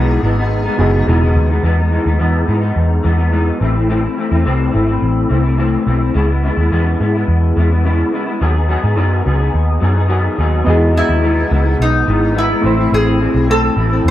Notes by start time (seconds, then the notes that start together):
Already playing: B1 E3 G#3 B3 D#4 F#4 G#4
0.22 G#1 E3 G#3 B3 D#4
0.36 G#3 B3 D#4
0.64 G#3 B3 D#4
0.78 F#1 E3 G#3 B3 D#4 F#4 G#4
0.92 G#3 B3 D#4
1.07 E1 E3 G#3 B3 D#4
1.21 G#3 B3 D#4
1.35 D#2
1.49 G#3 B3 D#4
1.63 E2 E3 G#3 B3 D#4
1.77 G#3 B3 D#4
1.91 E3 G#3 B3 D#4
2.05 D#2 G#3 B3 D#4
2.19 E2 E3 G#3 B3 D#4
2.46 G#2 E3 G#3 B3 D#4
2.61 G#3 B3 D#4
2.76 E2
3.03 E2 E3 G#3 B3 D#4
3.17 G#3 B3 D#4
3.31 E3 G#3 B3 D#4
3.60 A1 E3 A3 C4 E4
3.74 A3 C4 E4
3.88 A2 E3 A3 C4 E4
4.03 A3 C4 E4
4.17 E3 A3 C4 E4
4.31 E2 A3 C4 E4
4.45 C2 A2 E3 A3 C4 E4
4.72 G#1 E3 A3 C4 E4
4.86 A3 C4 E4
5.02 A1
5.29 C2 E3 A3 C4 E4
5.43 A3 C4 E4
5.58 A2 E3 A3 C4 E4
5.86 B1 E3 A3 C4 E4
6.00 A3 C4 E4
6.14 C#2 C#3 G#3 B3 E4
6.28 G#3 B3 E4
6.43 C#3 G#3 B3 E4
6.56 D#2 G#3 B3 E4
6.71 E2 C#3 G#3 B3 E4
6.99 G#2 C#3 G#3 B3 E4
7.14 G#3 B3 E4
7.28 E2
7.56 E2 C#3 G#3 B3 E4
7.70 G#3 B3 E4
7.84 C#3 G#3 B3 E4
8.12 C#3 G#3 B3 E4
8.26 G#3 B3 E4
8.40 D#2 D#3 F#3 B3 D#4 G#4
8.54 B3 D#4 G#4
8.68 F#3 B3 D#4 G#4
8.82 G#2 B3 D#4 G#4
8.96 F#2 D#3 F#3 B3 D#4 G#4
9.24 C#2 F#3 B3 D#4 G#4
9.38 B3 D#4 G#4
9.54 D#2
9.81 F#2 F#3 B3 D#4 G#4
9.95 B3 D#4 G#4
10.08 D#3 F#3 B3 D#4 G#4
10.37 D#2 F#3 B3 D#4 G#4
10.65 E2 E3 G#3 B3 D#4 F#4 D#5
10.70 G#4
10.94 E3 G#3 B3 D#4 E4
11.09 D#2
11.22 E3 G#3 B3 D#4
11.50 C#2 E3 G#3 B3 D#4
11.64 G#3 B3 D#4
11.79 B1 D#4
12.06 G#1 E3 G#3 B3 D#4
12.35 E3 G#3 B3 D#4 E4
12.49 G#3 B3 D#4
12.62 A1 E3 A3 C4 E4
12.66 E4 C5
12.77 A3 C4 E4
12.91 A1 A2 E3 A3 C4 E4 G#4
13.19 E3 A3 C4 E4
13.34 B1
13.48 A2 E3 A3 C4 E4 A4
13.76 A1 E3 A3 C4 E4
13.90 A3 C4 E4
14.05 E2